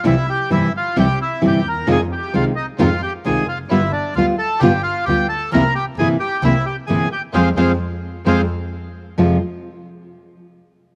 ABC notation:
X:1
M:4/4
L:1/8
Q:1/4=132
K:Fm
V:1 name="Bandoneon"
[=E=e] [Gg] [Ee] [Ff] [Gg] [Ee] [Gg] [Bb] | [Aa] [Gg] [Ff] [Ee] [Ff] [Gg] [Aa] [Ff] | [=E=e] [=D=d] [Ff] [=A=a] [Gg] [Ff] [Gg] [Aa] | [Bb] [Gg] [Aa] [Gg] [=E=e] [Gg] [Aa] [Gg] |
[Acf] [Acf] z2 [Acf] z3 | z8 |]
V:2 name="String section"
[G,C=E] z [G,CE] z [G,CE] z [G,CE] z | [A,EF] z [A,EF] z [A,EF] z [A,EF] z | [G,=B,F] z [G,B,F] z [G,B,F] z [G,B,F] z | [B,C=E] z [B,CE] z [B,CE] z [B,CE] z |
[A,CF] [A,CF] z2 [A,CF] z3 | [A,CF] z6 z |]
V:3 name="Nylon-string guitar" clef=bass
[C,=E,G,C=E] z [C,E,G,CE] z [C,E,G,CE] z [C,E,G,CE] z | [C,E,A,CF] z [C,E,A,CF] z [C,E,A,CF] z [C,E,A,CF] z | [G,=B,F] z [G,B,F] z [G,B,F] z [G,B,F] z | [C,=E,B,C=E] z [C,E,B,CE] z [C,E,B,CE] z [C,E,B,CE] z |
[F,A,C] [F,A,C] z2 [F,A,C] z3 | [F,,C,F,A,CF] z6 z |]
V:4 name="Double bass" clef=bass
C,, z G,,, z C,, z G,,, E,, | F,, z C,, z F,, z C,, F,,, | G,,, z =D,, z G,,, z D,, z | C,, z G,,, z C,, z G,,, z |
F,, F,, z2 F,, z3 | F,, z6 z |]